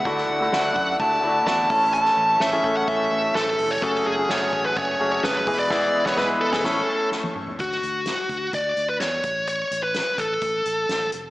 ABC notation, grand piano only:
X:1
M:4/4
L:1/16
Q:1/4=127
K:A
V:1 name="Grand piano"
[A,DEF]3 [A,DEF]6 z [A,DEF]4 [A,CEA]2- | [A,CEA]4 z [A,CEG] [A,CEA]6- [A,CEA] z3 | [A,CFG]3 [A,CFG]6 z [A,CFG]4 [G,B,EG]2 | [E,G,B,EG]2 z [G,B,EB] [G,B,EB]2 z [G,B,EG] [A,,A,CEA]2 z6 |
z16 | z16 |]
V:2 name="Grand piano" clef=bass
D,6 z8 A,,2- | A,,4 z12 | z12 z2 E,2 | z16 |
z16 | z16 |]